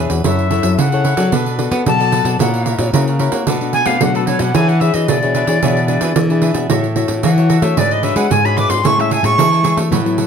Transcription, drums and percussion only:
0.10 pandeiro
0.24 pandeiro
0.39 pandeiro
0.51 pandeiro
0.63 pandeiro
0.79 pandeiro
0.92 pandeiro
1.05 pandeiro
1.17 pandeiro
1.32 pandeiro
1.46 pandeiro
1.59 pandeiro
1.71 pandeiro
1.86 pandeiro
2.00 pandeiro
2.12 pandeiro
2.25 pandeiro
2.40 pandeiro
2.54 pandeiro
2.66 pandeiro
2.79 pandeiro
2.94 pandeiro
3.08 pandeiro
3.19 pandeiro
3.32 pandeiro
3.47 pandeiro
3.61 pandeiro
3.73 pandeiro
3.86 pandeiro
4.01 pandeiro
4.15 pandeiro
4.27 pandeiro
4.39 pandeiro
4.54 pandeiro
4.69 pandeiro
4.81 pandeiro
4.94 pandeiro
5.08 pandeiro
5.22 pandeiro
5.35 pandeiro
5.47 pandeiro
5.63 pandeiro
5.77 pandeiro
5.88 pandeiro
6.01 pandeiro
6.16 pandeiro
6.30 pandeiro
6.42 pandeiro
6.54 pandeiro
6.70 pandeiro
6.84 pandeiro
6.96 pandeiro
7.08 pandeiro
7.23 pandeiro
7.38 pandeiro
7.50 pandeiro
7.62 pandeiro
7.77 pandeiro
7.91 pandeiro
8.03 pandeiro
8.16 pandeiro
8.31 pandeiro
8.45 pandeiro
8.57 pandeiro
8.70 pandeiro
8.85 pandeiro
9.00 pandeiro
9.11 pandeiro
9.24 pandeiro
9.39 pandeiro
9.53 pandeiro
9.64 pandeiro
9.78 pandeiro
9.92 pandeiro
10.06 pandeiro
10.18 pandeiro

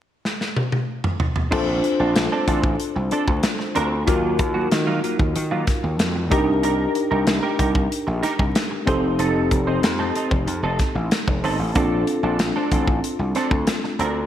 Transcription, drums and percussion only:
0.25 snare
0.41 snare
0.56 high tom
0.72 high tom
1.04 mid tom
1.20 floor tom
1.36 floor tom
1.52 kick, crash
1.84 closed hi-hat
2.16 snare, closed hi-hat
2.48 kick, closed hi-hat
2.64 kick
2.80 closed hi-hat
3.11 closed hi-hat
3.28 kick
3.43 snare, closed hi-hat
3.60 snare
3.75 closed hi-hat
4.07 kick, closed hi-hat
4.39 kick, closed hi-hat
4.72 snare, closed hi-hat
5.04 closed hi-hat
5.19 kick
5.36 closed hi-hat
5.67 kick, snare, closed hi-hat
5.99 snare, closed hi-hat
6.32 kick, closed hi-hat
6.63 closed hi-hat
6.95 closed hi-hat
7.27 snare, closed hi-hat
7.59 kick, closed hi-hat
7.75 kick
7.92 closed hi-hat
8.23 snare, closed hi-hat
8.39 kick
8.55 snare, closed hi-hat
8.87 kick, closed hi-hat
9.19 closed hi-hat
9.51 kick, closed hi-hat
9.83 snare, closed hi-hat
10.16 closed hi-hat
10.31 kick
10.48 closed hi-hat
10.79 kick, snare, closed hi-hat
11.11 snare, closed hi-hat
11.28 kick
11.44 open hi-hat
11.75 kick, closed hi-hat
12.07 closed hi-hat
12.39 snare, closed hi-hat
12.71 kick, closed hi-hat
12.87 kick
13.04 closed hi-hat
13.35 snare, closed hi-hat
13.51 kick
13.67 snare, closed hi-hat
13.84 snare
14.00 closed hi-hat

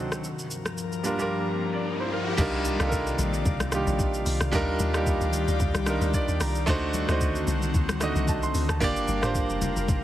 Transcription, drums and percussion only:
0.12 cross-stick, shaker
0.24 shaker
0.39 shaker
0.51 shaker
0.66 cross-stick, shaker
0.78 shaker
0.92 shaker
1.04 shaker
1.19 shaker
2.38 kick, crash, low conga, shaker
2.65 high conga, shaker
2.80 cross-stick, shaker
2.92 kick, shaker
3.07 shaker
3.19 high conga, shaker
3.34 shaker
3.45 kick, low conga, shaker
3.60 cross-stick, high conga, shaker
3.72 cross-stick, shaker
3.87 high conga, shaker
3.99 kick, shaker
4.14 shaker
4.26 open hi-hat, shaker
4.41 cross-stick, shaker
4.53 kick, low conga, shaker
4.79 high conga, shaker
4.94 cross-stick, shaker
5.06 kick, shaker
5.21 shaker
5.33 high conga, shaker
5.48 shaker
5.60 kick, low conga, shaker
5.75 cross-stick, high conga, shaker
5.86 cross-stick, shaker
6.01 high conga, shaker
6.13 kick, shaker
6.28 shaker
6.41 cross-stick, open hi-hat, shaker
6.55 shaker
6.67 kick, low conga, shaker
6.94 high conga, shaker
7.09 cross-stick, shaker
7.21 kick, shaker
7.35 shaker
7.47 high conga, shaker
7.62 shaker
7.74 kick, low conga, shaker
7.89 cross-stick, high conga, shaker
8.01 cross-stick, shaker
8.16 high conga, shaker
8.28 kick, shaker
8.43 shaker
8.55 open hi-hat, shaker
8.69 cross-stick, shaker
8.81 kick, low conga, shaker
8.96 shaker
9.08 high conga, shaker
9.23 cross-stick, mid tom, shaker
9.35 kick, shaker
9.50 shaker
9.62 high conga, low conga, shaker
9.76 high conga, shaker
9.88 kick, low conga, shaker

